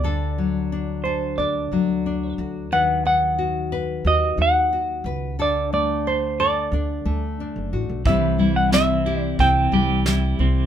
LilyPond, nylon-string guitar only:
\new Staff \with { instrumentName = "Nylon-string guitar" } { \time 4/4 \key d \mixolydian \tempo 4 = 90 << { a'4 d'8 a'8 d'4 d'8 fis'8 | b'4 fis'8 b'8 fis'4 fis'8 b'8 | a'4 d'8 a'8 d'4 d'8 fis'8 | <g c' e' g'>4 c'8 g'2~ g'8 | } \\ { d8 fis2 fis4. | dis8 dis'2 dis'4. | d8 a2 a4. | c8 g2 g4 c8 | } >> }